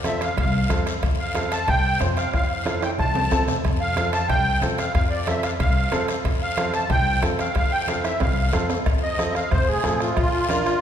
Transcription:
Already playing: upright bass F2
0.04 upright piano C4 F4 A4, accordion E5, bombo rim, high conga, high timbale, short guiro
0.21 accordion F5, bombo rim, high timbale, short guiro
0.37 upright bass C2, accordion F5, bombo low, bombo rim, high conga, low conga, high timbale, long guiro
0.69 upright bass F2, upright piano C4 F4 A4, bombo low, bombo rim, high conga, high timbale, short guiro
0.87 bombo rim, high timbale, short guiro
1.03 upright bass F2, bombo low, bombo rim, high conga, low conga, high timbale, long guiro
1.20 accordion F5
1.34 upright piano C4 F4 A4, bombo rim, high conga, high timbale, short guiro
1.52 accordion A5, bombo rim, high timbale, short guiro
1.67 upright bass C2, accordion G5, bombo low, bombo rim, high conga, low conga, high timbale, long guiro
2.00 upright bass F2, upright piano C4 F4 C5, bombo rim, high conga, low conga, high timbale, low timbale, short guiro
2.17 accordion F5, bombo rim, high timbale, short guiro
2.33 upright bass F2, accordion F5, bombo low, bombo rim, high conga, high timbale, long guiro
2.50 accordion F5
2.66 upright piano C4 F4 A4, accordion F5, bombo rim, high conga, high timbale, short guiro
2.82 accordion G5, bombo rim, high timbale, short guiro
2.98 upright bass C2, accordion A5, bombo low, bombo rim, high conga, low conga, long guiro
3.15 high conga, low timbale
3.31 upright bass F2, upright piano C4 F4 A4, bombo low, bombo rim, high conga, low timbale, short guiro
3.47 bombo rim, low conga, low timbale, short guiro
3.64 upright bass F2, bombo low, bombo rim, high conga, low conga, high timbale, long guiro
3.81 accordion F5
3.96 upright piano C4 F4 A4, bombo rim, high conga, high timbale, short guiro
4.12 accordion A5, bombo rim, high timbale, short guiro
4.29 upright bass C2, accordion G5, bombo low, bombo rim, high conga, low conga, high timbale, long guiro
4.61 upright bass F2, upright piano C4 F4 A4, bombo rim, high conga, low conga, high timbale, short guiro
4.77 accordion F5, bombo rim, high timbale, short guiro
4.94 upright bass F2, accordion F5, bombo low, bombo rim, high conga, high timbale, long guiro
5.10 accordion D5
5.26 upright piano C4 F4 A4, accordion E5, bombo rim, high conga, high timbale, short guiro
5.43 accordion F5, bombo rim, high timbale, short guiro
5.59 upright bass C2, accordion F5, bombo low, bombo rim, high conga, low conga, high timbale, long guiro
5.91 upright bass F2, upright piano C4 F4 A4, bombo rim, high conga, high timbale, low timbale, short guiro
6.08 bombo rim, high timbale, short guiro
6.24 upright bass F2, bombo low, bombo rim, high conga, low conga, high timbale, long guiro
6.42 accordion F5
6.57 upright piano C4 F4 A4, bombo rim, high conga, high timbale, short guiro
6.74 accordion A5, bombo rim, high timbale, short guiro
6.90 upright bass C2, accordion G5, bombo low, bombo rim, high conga, low conga, high timbale, long guiro
7.22 upright bass F2, upright piano C4 F4 A4, bombo rim, high conga, high timbale, short guiro
7.39 accordion F5, bombo rim, high timbale, short guiro
7.55 upright bass F2, accordion F5, bombo low, bombo rim, high conga, high timbale, long guiro
7.72 accordion G5
7.88 upright piano C4 F4 A4, accordion F5, bombo rim, high conga, high timbale, short guiro
8.04 accordion E5, bombo rim, high timbale, short guiro
8.20 upright bass C2, accordion F5, bombo low, bombo rim, high conga, low conga, low timbale, long guiro
8.53 upright bass F2, upright piano C4 F4 A4, bombo rim, high conga, low timbale, short guiro
8.70 bombo rim, low timbale, short guiro
8.86 upright bass F2, bombo low, bombo rim, cowbell, high conga, long guiro
9.03 accordion D#5
9.18 upright piano C4 F4 A4, bombo rim, high conga, short guiro
9.31 accordion E5, bombo rim
9.36 accordion F5, short guiro
9.51 upright bass F2, accordion C5, bombo low, bombo rim, cowbell, high conga, low conga, long guiro
9.68 upright bass A2, accordion G#4
9.83 upright bass A2, upright piano C4 F4 A4, bombo rim, high conga, short guiro
10.00 accordion F4, bombo rim, short guiro
10.14 upright bass A#1, accordion E4, bombo low, bombo rim, cowbell, high conga, low conga, long guiro
10.18 accordion F4
10.49 upright piano D4 F4 A#4, bombo rim, high conga, short guiro
10.66 bombo rim, short guiro

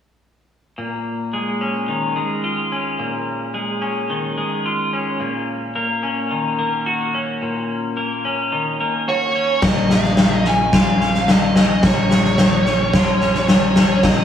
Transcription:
0.78 clean electric guitar A#2
1.33 clean electric guitar G#3
1.61 clean electric guitar C#4
1.88 clean electric guitar D#3
2.16 clean electric guitar G#3
2.44 clean electric guitar F4
2.72 clean electric guitar C#4
2.99 clean electric guitar A#2
3.54 clean electric guitar G#3
3.82 clean electric guitar C#4
4.10 clean electric guitar D#3
4.38 clean electric guitar G#3
4.66 clean electric guitar F4
4.93 clean electric guitar C#4
5.20 clean electric guitar A#2
5.75 clean electric guitar A#3
6.03 clean electric guitar C#4
6.31 clean electric guitar D#3
6.59 clean electric guitar A#3
6.86 clean electric guitar F#4
7.14 clean electric guitar C#4
7.42 clean electric guitar A#2
7.97 clean electric guitar A#3
8.25 clean electric guitar C#4
8.52 clean electric guitar D#3
8.81 clean electric guitar A#3
9.08 clean electric guitar F#4, lead electric guitar C#5
9.35 clean electric guitar C#4
9.62 picked electric bass A#1, clean electric guitar A#2, lead electric guitar D#5, kick, snare
9.90 clean electric guitar G#3, lead electric guitar F5, snare
10.04 snare
10.17 clean electric guitar D#3, snare
10.37 lead electric guitar D#5
10.45 clean electric guitar C#4, lead electric guitar G#5, snare
10.73 clean electric guitar F4, lead electric guitar F5, kick, snare
11.01 clean electric guitar C#4, snare
11.14 snare
11.28 clean electric guitar D#3, lead electric guitar D#5, snare
11.56 clean electric guitar C#4, snare
11.83 picked electric bass A#1, clean electric guitar A#2, lead electric guitar C#5, kick, snare
12.11 clean electric guitar G#3, snare
12.24 snare
12.38 clean electric guitar D#3, snare
12.66 clean electric guitar C#4, snare
12.93 clean electric guitar F4, kick, snare
13.21 clean electric guitar C#4, snare
13.35 snare
13.48 clean electric guitar D#3, lead electric guitar C#5, snare
13.76 clean electric guitar C#4, snare
14.03 picked electric bass A#1, clean electric guitar A#2, lead electric guitar D#5, kick, snare

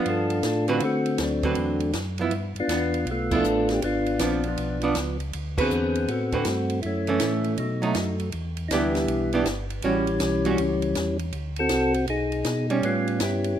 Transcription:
Already playing: hollow-body jazz guitar F3 B3
0.06 tonewheel organ G2 D4 A4, ride
0.10 tonewheel organ F4
0.30 ride
0.43 tonewheel organ A2, snare, hi-hat pedal, ride
0.68 hollow-body jazz guitar D3 C4 F#4 B4, ride
0.79 tonewheel organ D3 F4, ride
0.83 tonewheel organ A3 C4 F#4
1.06 ride
1.18 tonewheel organ D2 F#3 A3, snare, hi-hat pedal, ride
1.23 tonewheel organ D4
1.43 hollow-body jazz guitar D3 C4 F#4 B4, kick, ride
1.55 tonewheel organ E2, ride
1.80 ride
1.93 tonewheel organ F#2, snare, hi-hat pedal, ride
2.18 hollow-body jazz guitar F3 B3 E4, ride
2.31 tonewheel organ G2, ride
2.55 tonewheel organ G2, ride
2.60 tonewheel organ B3 D4 F4
2.68 tonewheel organ E2, hollow-body jazz guitar B3, snare, hi-hat pedal, ride
2.94 ride
3.06 tonewheel organ B1, ride
3.11 tonewheel organ A3 B3 F4
3.31 hollow-body jazz guitar F3 B3 E4, tonewheel organ D4 F4, kick, crash
3.36 tonewheel organ A4
3.44 tonewheel organ A1, hi-hat pedal
3.69 tonewheel organ G4, snare, ride
3.82 tonewheel organ G#1 B3 D4 F4, ride
4.06 ride
4.19 tonewheel organ A#1, hollow-body jazz guitar F3 B3 D4, snare, hi-hat pedal, ride
4.24 tonewheel organ C4
4.44 ride
4.48 tonewheel organ F3 B3 D4
4.57 tonewheel organ B1, ride
4.82 hollow-body jazz guitar F3 B3 D4, ride
4.95 tonewheel organ C#2, snare, hi-hat pedal, ride
5.20 ride
5.33 tonewheel organ D2, ride
5.58 hollow-body jazz guitar D3 F#4 B4, tonewheel organ B3 G#4, kick, crash
5.62 tonewheel organ C4
5.71 tonewheel organ E2, hi-hat pedal
5.95 ride
6.08 tonewheel organ A2 A3 C4 F#4, ride
6.32 hollow-body jazz guitar D3 C4 F#4 B4, kick, ride
6.45 tonewheel organ G2, snare, hi-hat pedal, ride
6.70 ride
6.82 tonewheel organ F#2 A3 E4, ride
6.86 tonewheel organ C#4
7.07 hollow-body jazz guitar E3 A3 C#4, ride
7.20 tonewheel organ A2, snare, hi-hat pedal, ride
7.44 ride
7.58 tonewheel organ B2 F#3 A3 D#4, ride
7.82 hollow-body jazz guitar F#3 A3 D#4, ride
7.95 tonewheel organ F#2, snare, hi-hat pedal, ride
8.20 ride
8.32 tonewheel organ E2, ride
8.57 ride
8.68 tonewheel organ D2 D#4, hollow-body jazz guitar E3, snare, hi-hat pedal, ride
8.73 tonewheel organ G3 B3 E4, hollow-body jazz guitar B3 D4 G4
8.95 snare, ride
9.08 tonewheel organ B1, ride
9.33 hollow-body jazz guitar E3 B3 D4 G4, ride
9.45 tonewheel organ G1, snare, hi-hat pedal, ride
9.70 ride
9.82 tonewheel organ A1 E3 G3 C#4, hollow-body jazz guitar G3 C#4 F#4, ride
10.07 ride
10.20 tonewheel organ B1, snare, hi-hat pedal, ride
10.45 hollow-body jazz guitar G3 C#4 F#4, ride
10.58 tonewheel organ C#2, ride
10.82 ride
10.95 tonewheel organ E2, snare, hi-hat pedal, ride
11.19 ride
11.33 tonewheel organ D2, ride
11.56 tonewheel organ C4 F#4 A4, ride
11.69 tonewheel organ C2, snare, hi-hat pedal, ride
11.94 ride
12.08 tonewheel organ B1 D#4 G#4, ride
12.32 ride
12.45 tonewheel organ B2, snare, hi-hat pedal, ride
12.70 hollow-body jazz guitar G3 C#4, ride
12.83 tonewheel organ A2 B3 C#4 F4, ride
13.08 ride
13.20 tonewheel organ G2 C#4 E4 G4, snare, hi-hat pedal, ride
13.44 ride

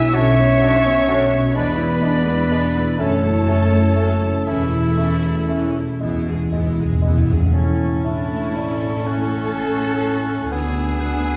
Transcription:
Already playing: harp B2 D4 F#4 D5, viola section F#3 B3, french horn section E4, violin section E5, cor anglais E5
0.10 double bass section B1, cello section B2, bassoon F#3, viola section D4, harp B4, violin section C#5 C#6, flute E5
0.14 viola section D3, french horn section C#4, clarinet D4, cor anglais C#5
0.38 viola section F#3 B3
0.60 viola section D3 D4, bassoon F#3, clarinet D4, harp D5
0.85 viola section F#3 B3
1.08 viola section D3 D4, bassoon F#3, clarinet D4, harp F#4
1.32 viola section F#3 B3
1.54 double bass section E1, cello section E2, harp E2, bassoon G#3, viola section B3 D4, french horn section B3, clarinet D4, violin section B4 B5, cor anglais B4
1.58 flute D5
1.78 viola section G#3 E4
2.01 bassoon G#3, viola section B3 D4, harp D4, clarinet D4
2.25 viola section G#3 E4
2.50 bassoon G#3, viola section B3 D4, clarinet D4, harp E4 G#4
2.75 viola section G#3 E4
2.98 double bass section F#1, harp F#2, cello section F#2, viola section F#3 C#4, bassoon A3, french horn section A3, clarinet C#4, cor anglais A4, violin section A4 A5, flute C#5
3.23 viola section A3 E4
3.46 viola section F#3 C#4, bassoon A3, clarinet C#4, harp C#4
3.71 viola section A3 E4
3.96 viola section F#3 C#4, bassoon A3, clarinet C#4, harp A4
4.21 viola section A3 E4
4.47 double bass section E1, cello section E2, harp E2, french horn section E3, viola section E3 C#4, bassoon A3, clarinet C#4, violin section E4 E5, cor anglais E4, flute A4
4.72 viola section A3 E4
4.97 viola section E3 C#4, bassoon A3, harp C#4, clarinet C#4
5.23 viola section A3 E4
5.49 viola section E3 C#4, bassoon A3, clarinet C#4, harp E4 A4
5.75 viola section A3 E4
6.01 double bass section E1, harp E2, timpani E2, cello section B2, bassoon G#3, clarinet B3, viola section B3 E4
6.12 timpani E2
6.20 timpani E2
6.28 timpani E2, viola section G#3 G#4
6.36 timpani E2
6.44 timpani E2
6.51 timpani E2, cello section G#2, bassoon G#3, clarinet B3, harp B3, viola section B3 E4
6.60 timpani E2
6.67 timpani E2
6.76 timpani E2, viola section G#3 G#4
6.84 timpani E2
6.92 timpani E2
6.98 timpani E2, bassoon G#3
7.04 timpani E2, cello section F#2, clarinet B3, viola section B3 E4, harp E4 G#4
7.15 timpani E2
7.23 timpani E2
7.30 timpani E2, viola section G#3 G#4
7.39 timpani E2
7.46 timpani E2
7.53 double bass section A1, cello section A2, harp A2, viola section A3 C#4, bassoon C#4, french horn section C#4 E4, clarinet E4, cor anglais A5, flute C#6
7.80 harp E4
8.03 clarinet D4, violin section E4, bassoon E4, harp A4
8.30 harp E4
8.56 clarinet C#4, bassoon D4, harp A4
8.82 harp E4
9.06 bassoon C#4, violin section A4, harp A4, cor anglais F#5
9.31 harp E4
9.56 harp A4
9.80 harp G#4
10.03 harp A4
10.28 harp E4
10.51 double bass section D2, cello section D2, harp D3, bassoon B3, clarinet B3, french horn section B3 F#4, viola section B3 D4, violin section G#4, cor anglais G#5, flute E6
10.75 harp F#4
10.99 harp B4, cor anglais F#5

